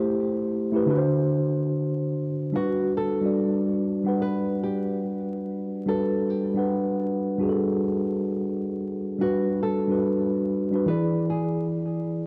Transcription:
0.00 0.71 A3 medium
0.00 0.73 E4 medium
0.00 0.28 G4 medium
0.00 0.74 G4 medium
0.00 0.89 C5 medium
0.71 0.86 A3 medium
0.71 0.87 E4 medium
0.71 0.88 G4 medium
0.76 0.89 B4 medium
0.86 2.22 D3 medium
0.86 2.23 D4 medium
0.86 2.24 F#4 medium
0.90 0.97 B4 medium
0.97 2.28 C5 loud
2.52 2.92 G3 medium
2.52 2.92 D4 medium
2.52 2.93 F#4 medium
2.52 2.92 F#4 loud
2.57 2.94 B4 medium
2.97 3.61 A4 medium
3.21 3.69 G3 medium
3.21 3.70 D4 medium
3.21 3.71 F#4 medium
3.26 3.72 D5 medium
4.04 5.00 G3 medium
4.04 5.01 D4 medium
4.04 5.01 F#5 medium
4.09 5.02 B4 medium
4.22 4.59 B4 medium
4.64 5.01 G4 medium
5.86 6.25 G3 medium
5.86 6.26 D4 medium
5.86 6.27 F#4 medium
5.86 6.30 A4 loud
5.90 6.27 B4 medium
6.30 6.94 G4 medium
6.54 7.03 G3 medium
6.54 7.03 D4 medium
6.54 7.04 F#5 medium
6.59 7.05 B4 medium
7.38 8.34 G3 medium
7.38 8.34 D4 medium
7.38 8.35 F#4 medium
7.42 7.45 G#4 medium
7.49 8.39 A4 medium
9.19 9.58 G3 medium
9.19 9.59 D4 medium
9.19 9.59 F#4 loud
9.19 9.60 F#4 medium
9.23 9.61 B4 medium
9.63 10.27 A4 medium
9.87 10.36 G3 medium
9.87 10.37 D4 medium
9.87 10.37 F#4 medium
9.92 10.38 B4 medium
10.71 10.86 G3 medium
10.71 10.87 D4 medium
10.71 10.88 F#4 medium
10.75 10.88 B4 medium
10.86 12.22 E3 medium
10.86 12.23 E4 medium
10.86 12.24 G#4 medium
10.86 11.25 B4 medium
10.90 12.24 D5 medium
11.30 11.67 G#4 medium

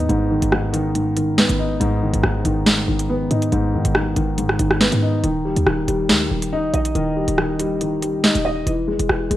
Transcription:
0.00 0.09 G#2 medium
0.00 0.31 D#3 medium
0.00 0.74 B3 medium
0.00 0.95 D#4 medium
0.09 0.41 G#1 loud
0.09 0.51 G#2 medium
0.09 closed hi-hat soft
0.31 0.71 D#3 medium
0.42 1.29 G#1 loud
0.42 closed hi-hat medium
0.52 0.93 G#2 medium
0.52 cross-stick medium
0.73 1.15 D#3 loud
0.73 closed hi-hat medium
0.95 1.79 G#2 medium
0.95 closed hi-hat medium
1.17 2.01 D#3 medium
1.17 closed hi-hat medium
1.28 1.39 G1 loud
1.38 1.49 G#1 loud
1.38 2.45 B3 loud
1.38 snare loud
1.49 1.80 G#1 loud
1.49 closed hi-hat medium
1.59 2.66 D#4 medium
1.80 2.12 G#1 loud
1.80 2.22 G#2 loud
1.80 closed hi-hat medium
2.02 2.44 D#3 medium
2.13 2.23 G#1 loud
2.13 closed hi-hat medium
2.23 2.44 G#1 loud
2.23 2.65 G#2 medium
2.23 cross-stick medium
2.45 2.68 G#1 loud
2.45 2.86 D#3 medium
2.45 closed hi-hat medium
2.66 2.87 G1 loud
2.66 3.51 G#2 medium
2.66 snare loud
2.66 closed hi-hat medium
2.88 3.29 G#1 loud
2.88 3.73 D#3 medium
2.99 closed hi-hat loud
3.09 4.17 B3 medium
3.31 3.51 G#2 loud
3.31 4.38 D#4 medium
3.31 closed hi-hat medium
3.42 closed hi-hat medium
3.52 3.75 G#1 loud
3.52 3.94 G#2 medium
3.52 closed hi-hat soft
3.74 3.84 G#2 loud
3.74 4.15 D#3 medium
3.85 4.15 G#1 loud
3.85 closed hi-hat medium
3.95 4.36 G#2 medium
3.95 cross-stick medium
4.16 4.58 G#1 loud
4.16 4.58 D#3 medium
4.16 closed hi-hat medium
4.38 5.24 G#2 medium
4.38 closed hi-hat medium
4.49 cross-stick medium
4.59 4.91 G#1 loud
4.59 5.22 D#3 medium
4.59 closed hi-hat medium
4.71 cross-stick medium
4.81 5.24 B3 medium
4.81 snare loud
4.92 5.22 G#2 loud
4.92 closed hi-hat medium
5.02 5.24 D#4 medium
5.24 5.55 D#1 loud
5.24 5.65 D#3 medium
5.24 closed hi-hat medium
5.45 5.87 G3 medium
5.56 5.66 D#2 loud
5.56 closed hi-hat medium
5.66 5.87 D#1 loud
5.66 6.08 D#3 medium
5.66 cross-stick medium
5.88 6.11 D#1 loud
5.88 6.29 G3 medium
5.88 closed hi-hat medium
6.09 6.30 D#2 loud
6.09 6.94 D#3 medium
6.09 snare loud
6.09 closed hi-hat medium
6.31 6.72 D#1 loud
6.31 7.15 G3 medium
6.42 closed hi-hat medium
6.53 7.60 D#4 loud
6.74 6.94 A#1 loud
6.74 7.81 D#5 medium
6.74 closed hi-hat medium
6.85 closed hi-hat medium
6.95 7.27 D#1 loud
6.95 7.37 D#3 medium
6.95 closed hi-hat soft
7.17 7.58 G3 medium
7.28 8.15 D#1 loud
7.28 closed hi-hat medium
7.38 7.79 D#3 medium
7.38 cross-stick medium
7.59 8.01 G3 medium
7.59 closed hi-hat medium
7.81 8.67 D#3 medium
7.81 closed hi-hat medium
8.02 8.67 G3 medium
8.02 closed hi-hat medium
8.14 8.25 C#1 loud
8.24 8.35 D#1 loud
8.24 8.67 D#4 medium
8.24 snare loud
8.35 8.65 D#1 loud
8.35 closed hi-hat medium
8.45 8.66 D#5 medium
8.66 8.98 E1 loud
8.66 9.08 E3 medium
8.66 closed hi-hat medium
8.88 9.29 G#3 medium
8.99 9.09 E1 loud
8.99 closed hi-hat medium
9.09 9.30 E1 loud
9.09 9.37 E3 medium
9.09 cross-stick medium
9.30 9.37 E1 loud
9.30 9.37 G#3 medium
9.30 closed hi-hat medium

